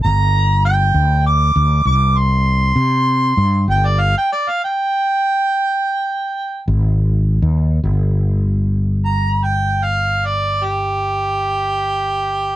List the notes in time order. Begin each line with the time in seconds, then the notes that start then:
0.04 G1 A#5
0.65 G5
0.94 D2
1.26 D6
1.56 D2
1.85 C2 D6
2.18 C6
2.76 C3
3.37 G2
3.68 G1 G5
3.86 D5
4.00 F5
4.18 G5
4.32 D5
4.49 F5
4.64 G5
6.68 G#1
7.42 D#2
7.84 G1
9.05 A#5
9.43 G5
9.84 F5
10.26 D5
10.64 G4